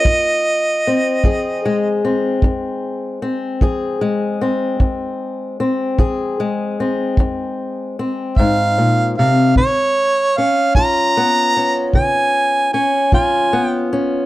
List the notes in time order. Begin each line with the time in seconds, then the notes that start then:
Already playing: F4 D#5
0.05 F2, kick
0.87 C4
1.24 F3 G#4, kick
1.65 G#3
2.05 C4
2.42 F2, kick
3.22 C4
3.61 F3 G#4, kick
4.01 G#3
4.41 C4
4.80 F2, kick
5.60 C4
5.99 F3 G#4, kick
6.40 G#3
6.80 C4
7.17 F2, kick
7.99 C4
8.37 G#2 F5, kick
8.78 A#2
9.18 C3 F5
9.56 C#3 C#5, kick
10.37 C#4 F5
10.75 F3 F4 A#5, kick
11.17 B3
11.57 C#4
11.93 C#3 G#5, kick
12.73 C#4 G#5
13.12 F3 F4 G#5, kick
13.53 B3
13.65 G5
13.93 C#4